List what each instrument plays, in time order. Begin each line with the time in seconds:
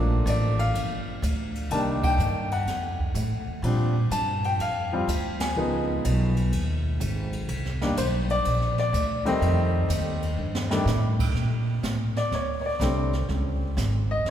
Already playing: upright bass A#1, grand piano F3 A3 A#3 D4
0.26 upright bass A1, grand piano D5, hi-hat pedal, ride
0.59 grand piano F5, ride
0.74 upright bass G1, ride
1.22 upright bass D2, hi-hat pedal, ride
1.55 ride
1.70 upright bass C2, grand piano D#3 G3 A#3 D4 A5, ride
2.03 grand piano G5, kick, crash
2.18 upright bass G2, hi-hat pedal
2.51 grand piano F#5, ride
2.66 upright bass F2, snare, ride
3.00 kick
3.14 upright bass A2, hi-hat pedal, ride
3.31 upright bass F2
3.47 upright bass D#2
3.62 upright bass A#2, grand piano F3 G3 C4 D4, ride
4.10 upright bass G2, grand piano A5, hi-hat pedal, ride
4.44 grand piano G5, ride
4.59 upright bass F2, grand piano F5, ride
4.92 grand piano F3 G3 C4 F4
5.07 upright bass D2, hi-hat pedal, ride
5.40 grand piano G#5, snare, ride
5.56 upright bass C#2, grand piano F3 G#3 B3 D#4
6.04 upright bass B1, hi-hat pedal, ride
6.37 ride
6.52 upright bass D#2, ride
7.00 upright bass G#1, hi-hat pedal, ride
7.33 ride
7.48 upright bass C2, ride
7.65 snare
7.81 grand piano D#3 G3 A#3 D4, snare
7.97 upright bass B1, grand piano C5, hi-hat pedal, ride
8.30 grand piano D5, ride
8.45 upright bass A#1, ride
8.61 snare
8.78 grand piano D5, snare
8.93 upright bass D2, hi-hat pedal, ride
9.25 grand piano D#3 G3 A3 C4 D#5, ride
9.41 upright bass F2, ride
9.89 upright bass D#2, hi-hat pedal, ride
10.22 ride
10.38 upright bass G2
10.55 snare
10.70 grand piano D#3 G3 A3 D4, snare
10.85 upright bass A2, snare, hi-hat pedal
11.19 kick, crash
11.34 upright bass A#2, brush sweep, snare
11.83 upright bass A2, snare, hi-hat pedal
12.16 grand piano D5, snare
12.32 upright bass D2, grand piano C#5, brush sweep, snare
12.61 grand piano C#5
12.66 grand piano D5
12.80 upright bass C2, grand piano D3 G3 A3 C4, snare, hi-hat pedal
13.13 snare
13.29 upright bass C#2, brush sweep, snare
13.77 upright bass G#1, snare, hi-hat pedal
14.11 grand piano D#5
14.25 upright bass F#1, brush sweep, snare